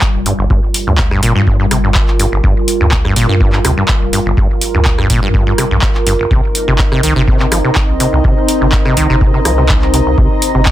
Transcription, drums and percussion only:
0.01 kick, clap
0.26 open hi-hat
0.50 kick
0.74 open hi-hat
0.98 kick, clap
1.11 cross-stick
1.23 open hi-hat
1.47 kick
1.71 cross-stick, open hi-hat
1.95 kick, clap
2.07 clap
2.19 open hi-hat
2.44 kick
2.68 open hi-hat
2.92 kick, clap
3.05 cross-stick
3.16 open hi-hat
3.40 kick
3.53 clap
3.65 cross-stick, open hi-hat
3.88 kick, clap
4.13 open hi-hat
4.37 kick
4.61 open hi-hat
4.85 kick, clap
4.98 cross-stick
5.10 kick, open hi-hat
5.34 kick
5.58 cross-stick, open hi-hat
5.82 kick, clap
5.95 clap
6.07 open hi-hat
6.31 kick
6.55 open hi-hat
6.79 kick, clap
6.92 cross-stick
7.03 open hi-hat
7.28 kick
7.40 clap
7.52 cross-stick, open hi-hat
7.75 kick, clap
8.00 open hi-hat
8.24 kick
8.48 open hi-hat
8.72 kick, clap
8.85 cross-stick
8.97 open hi-hat
9.21 kick
9.45 cross-stick, open hi-hat
9.69 kick, clap
9.82 clap
9.94 open hi-hat
10.18 kick
10.42 open hi-hat
10.66 kick, clap

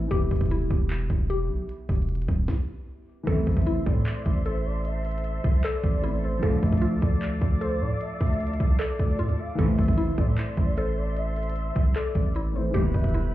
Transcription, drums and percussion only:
0.11 kick, closed hi-hat
0.31 kick, closed hi-hat, open hi-hat
0.36 closed hi-hat
0.41 kick, closed hi-hat
0.46 closed hi-hat
0.50 closed hi-hat
0.71 kick, closed hi-hat
0.90 clap, closed hi-hat
1.10 kick, closed hi-hat
1.30 closed hi-hat
1.69 closed hi-hat
1.89 kick, closed hi-hat, open hi-hat
1.96 closed hi-hat
2.02 closed hi-hat
2.09 closed hi-hat
2.15 closed hi-hat
2.22 closed hi-hat
2.28 kick, closed hi-hat
2.48 kick, snare
3.27 kick, closed hi-hat
3.47 kick, closed hi-hat, open hi-hat
3.52 closed hi-hat
3.57 kick, closed hi-hat
3.62 closed hi-hat
3.66 closed hi-hat
3.86 kick, closed hi-hat
4.06 clap, closed hi-hat
4.26 kick, closed hi-hat
4.46 closed hi-hat
4.85 closed hi-hat
5.05 closed hi-hat, open hi-hat
5.11 closed hi-hat
5.18 closed hi-hat
5.24 closed hi-hat
5.44 kick, closed hi-hat
5.64 clap, closed hi-hat
5.83 kick, closed hi-hat
6.03 closed hi-hat
6.43 kick, closed hi-hat
6.63 kick, closed hi-hat, open hi-hat
6.68 closed hi-hat
6.72 kick, closed hi-hat
6.78 closed hi-hat
6.82 closed hi-hat
7.02 kick, closed hi-hat
7.22 clap, closed hi-hat
7.41 kick, closed hi-hat
7.61 closed hi-hat
8.01 closed hi-hat
8.21 kick, closed hi-hat, open hi-hat
8.27 closed hi-hat
8.34 closed hi-hat
8.40 closed hi-hat
8.47 closed hi-hat
8.54 closed hi-hat
8.60 kick, closed hi-hat
8.80 clap, closed hi-hat
8.99 kick, closed hi-hat
9.19 closed hi-hat
9.29 closed hi-hat
9.59 kick, closed hi-hat
9.78 kick, closed hi-hat, open hi-hat
9.83 closed hi-hat
9.88 kick, closed hi-hat
9.93 closed hi-hat
9.98 closed hi-hat
10.18 kick, closed hi-hat
10.38 clap, closed hi-hat
10.57 kick, closed hi-hat
10.77 closed hi-hat
11.17 closed hi-hat
11.36 closed hi-hat, open hi-hat
11.43 closed hi-hat
11.50 closed hi-hat
11.56 closed hi-hat
11.76 kick, closed hi-hat
11.96 clap, closed hi-hat
12.15 kick, closed hi-hat
12.35 closed hi-hat
12.74 kick, closed hi-hat
12.94 kick, closed hi-hat, open hi-hat
12.99 closed hi-hat
13.04 kick, closed hi-hat
13.09 closed hi-hat
13.14 closed hi-hat

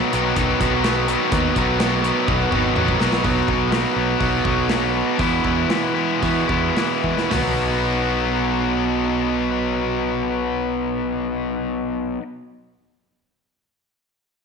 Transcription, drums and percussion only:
0.13 closed hi-hat
0.36 kick, closed hi-hat
0.61 kick, closed hi-hat
0.84 snare, closed hi-hat
1.08 closed hi-hat
1.32 kick, closed hi-hat
1.56 kick, closed hi-hat
1.80 snare, closed hi-hat
2.04 closed hi-hat
2.28 kick, high tom
2.52 kick
2.76 mid tom
2.88 kick
3.00 snare
3.13 snare
3.24 kick, open hi-hat
3.48 kick
3.72 snare, open hi-hat
4.21 kick, open hi-hat
4.45 kick
4.69 snare, open hi-hat
5.19 kick, open hi-hat
5.45 kick
5.70 snare, open hi-hat
6.22 kick, open hi-hat
6.49 kick
6.77 snare, open hi-hat
7.04 kick
7.18 snare
7.31 snare, floor tom, open hi-hat

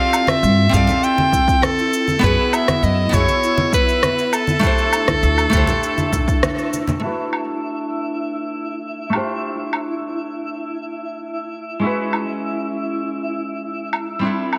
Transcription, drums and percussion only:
0.13 low woodblock, shaker
0.27 cross-stick, high conga, shaker
0.43 shaker
0.73 kick, shaker
0.87 muted conga, low conga, shaker
1.04 shaker
1.18 high conga
1.33 kick, low conga, shaker
1.48 kick, shaker
1.63 cross-stick, high conga, shaker
1.79 shaker
1.93 shaker
2.08 high conga, shaker
2.23 kick, shaker
2.53 low woodblock, shaker
2.68 cross-stick, high conga, shaker
2.83 shaker
3.12 kick, high conga, shaker
3.29 muted conga, shaker
3.43 shaker
3.58 muted conga, high conga
3.73 kick, shaker
3.89 shaker
4.03 cross-stick, high conga, shaker
4.18 shaker
4.33 low woodblock, shaker
4.47 high conga, shaker
4.63 kick, shaker
4.78 shaker
4.93 low woodblock, shaker
5.08 kick, cross-stick, high conga, shaker
5.23 shaker
5.38 low woodblock, shaker
5.53 kick, shaker
5.67 muted conga, low conga, shaker
5.83 shaker
5.98 high conga, shaker
6.12 kick, low conga, shaker
6.28 kick, shaker
6.43 cross-stick, high conga, shaker
6.58 shaker
6.73 muted conga, shaker
6.88 high conga, low conga, shaker
7.33 low woodblock
9.13 low woodblock
9.73 low woodblock
12.13 low woodblock
13.93 low woodblock
14.53 low woodblock

